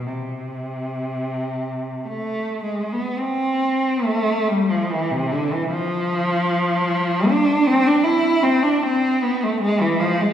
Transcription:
0.07 C3
2.07 A3
2.64 G#3
2.93 B3
3.18 C4
4.04 A3
4.48 G3
4.70 F3
4.90 E3
5.11 C3
5.32 D3
5.53 E3
5.71 F3
7.29 D4
7.67 C4
7.87 D4
8.03 E4
8.43 C4
8.63 D4
8.82 C4
9.22 B3
9.43 A3
9.61 G#3
9.81 E3
10.00 F3
10.21 G#3

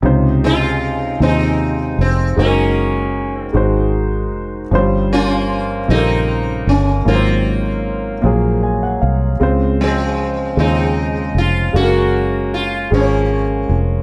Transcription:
0.02 C#2 C3 C#3 D#4 F4 C5
0.44 G#3 C4 F4
1.20 D#2 C3 G#3 C4 D#4 F4 C5
1.99 F1 C4
2.36 F#1 G#3 A#3 C#4 D#4 F#4 G#4
2.46 A#4
3.38 C4
3.53 G#1 G#3 D#4 F#4 C5
4.32 F1
4.71 G1 G2 F3 C#4 F4 C5
4.78 G3
5.13 A#3 C#4 F4
5.88 A#1 C#3 G3 A#3 C4 D#4 F4 A4
5.97 A#4
6.67 G1 C#4
7.05 G#1 G#2 F#3 A#3 C4 F4 A#4
7.15 C5
8.22 A#1 F#3 A#3 F4
8.26 G#4
8.63 G#5
8.83 F#5
9.01 C2 F5
9.40 C#2 C#3 G#3 C4 F4 C5
9.81 F3 G#3 C4
10.56 D#2 C#3 G#3 C4 D#4 F4 C5
11.35 F1 F4
11.73 F#1 G#3 A#3 C#4 F#4 A4 F5
11.83 A#4
12.54 F4
12.91 G#1 F3 G#3 C#4 F4 G#4 C5
12.95 A#3
13.01 C#5
13.69 F1

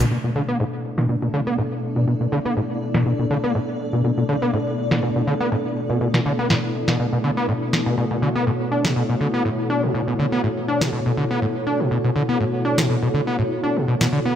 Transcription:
0.11 B2 A3 B3 D4
0.24 B2 E4
0.35 D3
0.46 B3 A4
0.60 A2
0.87 D5
0.98 B2, snare
1.09 B2
1.22 B2
1.34 D3
1.47 B3
1.58 A2
1.96 B2
2.07 B2
2.21 B2
2.32 D3
2.45 B3
2.57 A2
2.94 B2, snare
3.06 B2
3.19 B2
3.30 D3
3.44 B3
3.55 A2
3.93 B2
4.04 B2
4.17 B2
4.29 D3
4.42 B3
4.53 A2
4.91 B2, snare
5.03 B2
5.16 B2
5.27 D3
5.40 B3
5.52 A2
5.90 B2
6.01 B2
6.14 B2, snare
6.26 D3
6.39 B3
6.50 A2, snare
6.88 B2, snare
6.99 B2
7.13 B2
7.24 D3
7.37 B3
7.49 A2
7.73 C#5, snare
7.86 B2
7.98 B2 F#4
8.11 B2
8.22 D3
8.35 B3
8.47 A2
8.71 D4
8.85 B2, snare
8.96 B2
9.09 B2
9.21 D3
9.34 B3
9.45 A2
9.70 D4
9.83 B2
9.94 B2
10.08 B2
10.19 D3
10.32 B3
10.44 A2
10.68 D4
10.81 B2, snare
10.93 B2
11.06 B2
11.17 D3
11.31 B3
11.42 A2
11.67 D4
11.80 B2
11.91 B2
12.04 B2
12.16 D3
12.29 B3
12.40 A2
12.65 D4
12.78 B2, snare
12.90 B2
13.03 B2
13.14 D3
13.27 B3
13.39 A2
13.63 D4
13.76 B2
13.88 B2
14.01 B2, snare
14.12 D3
14.25 B3

